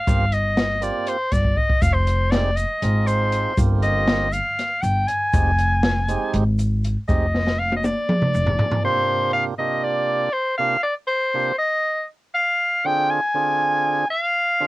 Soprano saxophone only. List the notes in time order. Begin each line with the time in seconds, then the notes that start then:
Already playing: F5
0.34 D#5
0.83 D5
1.09 C5
1.33 D5
1.57 D#5
1.82 F5
1.94 C5
2.31 D5
2.56 D#5
3.07 C5
3.82 D#5
4.33 F5
4.82 G5
5.07 G#5
7.08 D#5
7.59 F5
7.76 D#5
7.85 D5
8.85 C5
9.33 F5
9.58 D#5
9.84 D5
10.33 C5
10.58 F5
10.83 D5
11.07 C5
11.58 D#5
12.34 F5
12.86 G5
13.10 G#5
14.10 F5